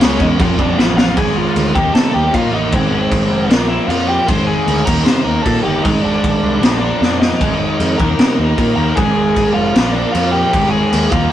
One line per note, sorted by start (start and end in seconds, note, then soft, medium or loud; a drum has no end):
0.00 0.19 C#2 medium
0.00 0.18 C#3 medium
0.00 0.18 G#3 loud
0.00 0.19 C#4 medium
0.00 0.19 C#4 loud
0.00 0.21 C#5 medium
0.00 snare loud
0.00 crash medium
0.19 0.38 E2 medium
0.19 0.38 C#3 loud
0.19 0.38 G#3 loud
0.19 0.38 C#4 medium
0.19 0.26 D#4 medium
0.19 0.26 D#5 medium
0.19 kick medium
0.38 0.58 F1 medium
0.38 0.56 F2 medium
0.38 0.56 C3 loud
0.38 0.57 F3 loud
0.38 0.94 F4 medium
0.38 0.96 F5 medium
0.38 kick loud
0.38 crash medium
0.57 0.77 F1 medium
0.57 0.75 F2 medium
0.57 0.76 C3 medium
0.57 0.76 F3 loud
0.57 0.77 D4 medium
0.57 0.79 D5 medium
0.57 kick medium
0.76 1.14 A1 medium
0.76 0.95 F2 loud
0.76 0.96 C3 loud
0.76 0.96 F3 loud
0.76 0.84 E4 medium
0.76 0.84 E5 medium
0.76 snare medium
0.96 1.15 F2 loud
0.96 1.16 C3 medium
0.96 1.16 F3 loud
0.96 1.16 F4 medium
0.96 1.17 F5 medium
0.96 snare loud
1.16 1.45 G#1 medium
1.16 1.74 G#2 medium
1.16 1.72 D#3 medium
1.16 1.74 G#3 medium
1.16 1.35 G#4 medium
1.16 1.36 G#5 medium
1.16 kick loud
1.16 crash medium
1.36 1.73 F4 medium
1.36 1.74 F5 medium
1.56 1.70 D2 medium
1.56 crash medium
1.73 1.90 D#2 medium
1.73 2.51 D#3 medium
1.73 2.52 A#3 medium
1.73 2.50 D#4 loud
1.73 1.94 G4 medium
1.73 1.93 G5 medium
1.73 kick loud
1.94 2.09 C3 medium
1.94 2.13 A4 medium
1.94 2.14 A5 loud
1.94 snare loud
1.94 crash medium
2.14 2.29 D#2 medium
2.14 2.33 G4 medium
2.14 2.34 G5 medium
2.33 2.48 A#2 medium
2.33 2.53 F4 medium
2.33 2.54 F5 medium
2.33 kick medium
2.33 crash medium
2.51 2.74 A1 medium
2.51 2.71 D#3 medium
2.51 2.71 A#3 medium
2.51 2.71 D#4 medium
2.51 2.74 D#5 medium
2.56 2.73 D#4 medium
2.70 2.87 G#1 loud
2.70 3.48 G#2 medium
2.70 3.48 D#3 medium
2.70 3.49 G#3 medium
2.70 2.91 C5 medium
2.70 kick loud
2.70 crash medium
2.75 2.92 C4 medium
2.92 3.06 G#1 medium
2.92 3.67 C4 medium
2.92 3.51 C5 medium
3.11 3.25 G#1 medium
3.11 kick medium
3.11 crash medium
3.30 3.44 F1 medium
3.48 3.77 A#1 medium
3.48 4.26 A#2 medium
3.48 4.27 F3 loud
3.48 4.28 A#3 medium
3.48 3.73 A#4 medium
3.48 snare loud
3.48 crash medium
3.68 3.88 E4 medium
3.68 3.88 E5 loud
3.88 4.17 F2 medium
3.88 4.08 F4 medium
3.88 4.07 F5 medium
3.88 crash medium
4.08 4.28 G4 medium
4.08 4.29 G5 loud
4.26 4.57 G#1 medium
4.26 4.85 G#2 medium
4.26 4.85 D#3 medium
4.26 4.86 G#3 loud
4.26 4.47 C5 medium
4.26 4.46 C6 loud
4.26 kick loud
4.26 crash medium
4.47 4.85 G#4 medium
4.47 4.84 G#5 loud
4.67 4.81 D2 medium
4.67 crash medium
4.85 5.01 D#2 medium
4.85 5.64 D#3 loud
4.85 5.64 A#3 loud
4.85 5.63 D#4 loud
4.85 5.05 A#4 medium
4.85 5.04 A#5 medium
4.85 kick loud
4.85 crash loud
5.05 5.20 C3 medium
5.05 5.25 C5 medium
5.05 5.23 C6 loud
5.05 snare loud
5.05 crash medium
5.23 5.40 D#2 medium
5.23 5.44 A#4 medium
5.23 5.42 A#5 loud
5.42 5.63 A4 medium
5.42 5.61 A5 loud
5.42 crash medium
5.46 5.60 A#2 medium
5.46 kick medium
5.61 5.83 D#4 medium
5.61 5.83 G4 medium
5.61 5.83 G5 loud
5.66 5.80 G1 medium
5.66 5.84 D#3 medium
5.66 5.84 A#3 medium
5.82 5.99 G#1 medium
5.82 6.61 G#2 medium
5.82 6.61 D#3 medium
5.82 6.03 D#4 medium
5.82 6.02 D#5 medium
5.82 kick loud
5.82 crash medium
5.86 6.62 G#3 medium
6.02 6.18 G#1 medium
6.02 6.78 D4 medium
6.02 6.78 D5 medium
6.24 6.38 G#1 medium
6.24 kick medium
6.24 crash medium
6.43 6.57 C2 medium
6.61 6.90 A#1 medium
6.61 7.39 A#2 medium
6.61 7.39 F3 loud
6.61 7.40 A#3 loud
6.61 snare loud
6.61 crash medium
6.79 7.18 D4 medium
6.79 7.17 D5 medium
7.01 7.29 F2 medium
7.01 snare medium
7.20 7.95 D#4 medium
7.20 7.99 D#5 loud
7.20 snare medium
7.39 7.69 G#1 loud
7.39 7.97 G#2 medium
7.39 7.97 D#3 medium
7.39 7.99 G#3 medium
7.39 kick loud
7.39 crash medium
7.80 7.94 F2 medium
7.80 crash medium
7.98 8.14 D#2 medium
7.98 8.76 D#3 loud
7.98 8.76 A#3 loud
7.98 8.75 D#4 loud
7.98 8.73 A#4 medium
7.98 8.72 A#5 medium
7.98 kick loud
8.19 8.33 C3 medium
8.19 snare loud
8.19 crash medium
8.39 8.52 D#2 medium
8.58 8.72 A#2 medium
8.58 kick medium
8.58 crash medium
8.76 8.91 D#2 medium
8.76 8.96 D#3 medium
8.76 8.96 A#3 medium
8.76 8.95 D#4 medium
8.76 8.96 A#4 medium
8.76 8.96 A#5 loud
8.96 9.11 G#1 medium
8.96 9.73 G#2 medium
8.96 9.74 D#3 medium
8.96 9.74 G#3 medium
8.96 9.51 G#4 medium
8.96 9.55 G#5 medium
8.96 kick loud
8.96 crash medium
9.17 9.31 G#1 medium
9.36 9.50 G#1 medium
9.36 kick medium
9.36 crash medium
9.54 9.70 F1 loud
9.54 9.92 F4 medium
9.54 9.95 F5 medium
9.74 10.04 A#1 medium
9.74 10.51 A#2 medium
9.74 10.52 F3 loud
9.74 10.52 A#3 loud
9.74 snare loud
9.74 crash medium
9.92 10.13 D4 medium
9.92 10.11 D5 medium
10.12 10.43 F2 medium
10.12 10.32 F4 medium
10.12 10.31 F5 medium
10.12 crash medium
10.32 10.70 G4 medium
10.32 10.70 G5 loud
10.51 10.81 G#1 loud
10.51 11.09 G#2 medium
10.51 11.08 D#3 medium
10.51 11.10 G#3 medium
10.51 kick loud
10.51 crash medium
10.71 11.09 G#4 medium
10.71 11.08 G#5 loud
10.93 11.06 D#2 medium
10.93 crash medium
11.09 11.26 D#2 medium
11.09 11.32 D#3 loud
11.09 11.32 A#3 loud
11.09 11.32 D#4 loud
11.09 11.30 F5 medium
11.09 kick loud
11.13 11.30 F4 medium